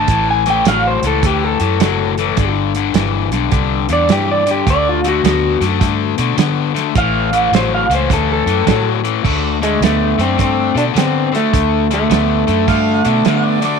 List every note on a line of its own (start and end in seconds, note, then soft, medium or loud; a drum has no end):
0.00 0.28 A5 loud
0.08 0.62 A1 loud
0.08 0.43 A2 medium
0.08 0.43 E3 medium
0.08 kick loud
0.08 closed hi-hat medium
0.31 0.48 G#5 medium
0.46 0.64 A2 medium
0.46 0.64 E3 medium
0.46 snare soft
0.46 closed hi-hat medium
0.50 0.67 G5 loud
0.65 1.00 A1 medium
0.65 1.00 A2 medium
0.65 1.00 F#3 medium
0.65 0.85 F5 medium
0.65 snare loud
0.65 closed hi-hat loud
0.87 1.05 C5 medium
1.03 1.21 C#2 medium
1.03 1.22 A2 medium
1.03 1.22 E3 medium
1.03 closed hi-hat medium
1.07 1.26 A4 medium
1.23 1.57 D2 medium
1.23 1.57 A2 medium
1.23 1.58 E3 medium
1.23 1.45 G4 loud
1.23 kick loud
1.23 closed hi-hat medium
1.45 2.54 A4 medium
1.60 1.79 F#2 medium
1.60 1.78 A2 medium
1.60 1.79 E3 medium
1.60 closed hi-hat medium
1.80 2.33 F#1 medium
1.80 2.14 A2 medium
1.80 2.14 F#3 medium
1.80 snare loud
1.80 closed hi-hat medium
2.18 2.36 A2 medium
2.18 2.36 E3 medium
2.18 closed hi-hat medium
2.37 2.90 G1 medium
2.37 2.72 G2 medium
2.37 2.72 D3 medium
2.37 kick loud
2.37 closed hi-hat medium
2.75 2.93 G2 medium
2.75 2.93 D3 medium
2.75 closed hi-hat medium
2.94 3.29 G1 loud
2.94 3.29 G2 medium
2.94 3.29 E3 loud
2.94 snare loud
2.94 closed hi-hat medium
3.31 3.50 B1 medium
3.31 3.50 G2 medium
3.31 3.50 D3 medium
3.31 snare soft
3.31 closed hi-hat medium
3.52 3.86 C2 loud
3.52 3.85 G2 medium
3.52 3.86 D3 medium
3.52 kick loud
3.52 closed hi-hat medium
3.89 4.07 E2 medium
3.89 4.07 G2 medium
3.89 4.07 D3 medium
3.89 closed hi-hat medium
3.93 4.10 D5 loud
4.09 4.62 G2 medium
4.09 4.43 G2 medium
4.09 4.43 E3 loud
4.09 4.29 G4 medium
4.09 snare loud
4.09 closed hi-hat medium
4.31 4.48 D5 medium
4.46 4.64 G2 medium
4.46 4.64 D3 medium
4.46 closed hi-hat medium
4.51 4.68 G4 medium
4.66 5.20 D2 medium
4.66 5.00 D3 medium
4.66 5.00 A3 medium
4.66 4.87 D5 loud
4.66 kick loud
4.66 closed hi-hat medium
4.89 5.06 F4 medium
5.04 5.22 D3 medium
5.04 5.22 A3 medium
5.04 closed hi-hat medium
5.08 5.62 F#4 loud
5.24 5.58 D2 medium
5.24 5.57 D3 medium
5.24 5.58 B3 medium
5.24 snare loud
5.24 closed hi-hat medium
5.60 5.79 F#2 medium
5.60 5.79 D3 medium
5.60 5.79 A3 medium
5.60 snare soft
5.60 closed hi-hat medium
5.81 6.15 G2 loud
5.81 6.14 D3 medium
5.81 6.14 A3 loud
5.81 kick loud
5.81 snare soft
5.81 closed hi-hat medium
6.18 6.37 B2 medium
6.18 6.36 D3 medium
6.18 6.36 A3 medium
6.18 closed hi-hat medium
6.37 6.71 D3 medium
6.37 6.91 D3 medium
6.37 6.71 B3 medium
6.37 snare loud
6.37 closed hi-hat loud
6.74 6.93 D3 medium
6.74 6.93 A3 medium
6.74 snare soft
6.74 closed hi-hat medium
6.95 7.48 A1 medium
6.95 7.29 A2 medium
6.95 7.29 E3 medium
6.95 7.52 F5 loud
6.95 kick loud
6.95 closed hi-hat loud
7.33 7.51 A2 medium
7.33 7.51 E3 medium
7.33 closed hi-hat medium
7.52 7.86 A1 medium
7.52 7.86 A2 medium
7.52 7.86 F#3 medium
7.52 7.72 C5 loud
7.52 snare loud
7.52 closed hi-hat medium
7.74 7.91 F5 medium
7.89 8.08 C#2 medium
7.89 8.08 A2 medium
7.89 8.08 E3 medium
7.89 closed hi-hat medium
7.95 8.11 C5 medium
8.09 8.44 D2 loud
8.09 8.43 A2 medium
8.09 8.43 E3 loud
8.09 8.30 A4 medium
8.09 kick loud
8.09 closed hi-hat medium
8.33 8.86 A4 loud
8.46 8.65 F#2 medium
8.46 8.64 A2 medium
8.46 8.65 E3 medium
8.46 closed hi-hat medium
8.66 9.00 A2 medium
8.66 9.20 A2 medium
8.66 9.00 F#3 medium
8.66 kick medium
8.66 snare loud
8.66 closed hi-hat medium
9.04 9.22 A2 medium
9.04 9.22 E3 medium
9.04 closed hi-hat medium
9.24 9.77 D2 medium
9.24 9.57 D3 medium
9.24 9.58 A3 medium
9.24 kick loud
9.24 crash loud
9.62 9.79 D3 medium
9.62 9.83 G#3 loud
9.62 9.80 A3 medium
9.62 closed hi-hat medium
9.80 10.15 D2 medium
9.80 10.15 D3 medium
9.80 10.21 A3 medium
9.80 10.16 B3 medium
9.80 snare loud
9.80 closed hi-hat medium
10.18 10.37 F#2 medium
10.18 10.36 D3 medium
10.18 10.37 A3 medium
10.18 10.40 C4 medium
10.18 closed hi-hat medium
10.38 10.73 G2 medium
10.38 10.71 D3 medium
10.38 10.72 A3 medium
10.38 10.77 C4 loud
10.38 kick medium
10.38 closed hi-hat medium
10.74 10.94 B2 medium
10.74 10.92 D3 medium
10.74 10.93 A3 medium
10.74 10.83 D4 medium
10.74 closed hi-hat medium
10.93 11.28 D3 medium
10.93 11.49 D3 medium
10.93 11.28 B3 medium
10.93 closed hi-hat loud
10.98 11.32 C4 loud
10.98 snare loud
11.32 11.50 D3 medium
11.32 11.51 A3 medium
11.32 11.92 A3 loud
11.32 closed hi-hat medium
11.36 snare soft
11.53 12.07 D2 medium
11.53 11.86 D3 medium
11.53 11.87 A3 medium
11.53 kick loud
11.53 closed hi-hat medium
11.91 12.08 D3 medium
11.91 12.09 A3 medium
11.91 13.60 A3 medium
11.91 snare soft
11.91 closed hi-hat medium
12.10 12.44 D2 medium
12.10 12.44 D3 medium
12.10 12.43 B3 medium
12.10 snare loud
12.10 closed hi-hat medium
12.47 12.66 F#2 medium
12.47 12.65 D3 medium
12.47 12.66 A3 medium
12.47 closed hi-hat medium
12.67 13.02 G2 medium
12.67 13.01 D3 medium
12.67 13.01 A3 medium
12.67 13.09 F5 loud
12.67 kick loud
12.67 snare soft
12.67 closed hi-hat medium
13.05 13.24 B2 medium
13.05 13.23 D3 medium
13.05 13.23 A3 medium
13.05 13.25 A5 medium
13.05 closed hi-hat medium
13.25 13.59 D3 medium
13.25 13.79 D3 medium
13.25 13.59 B3 medium
13.25 13.46 F5 medium
13.25 snare loud
13.25 closed hi-hat medium
13.44 13.63 D5 medium
13.61 13.79 D3 medium
13.61 13.79 A3 medium
13.61 13.79 D5 medium
13.61 snare soft
13.61 closed hi-hat medium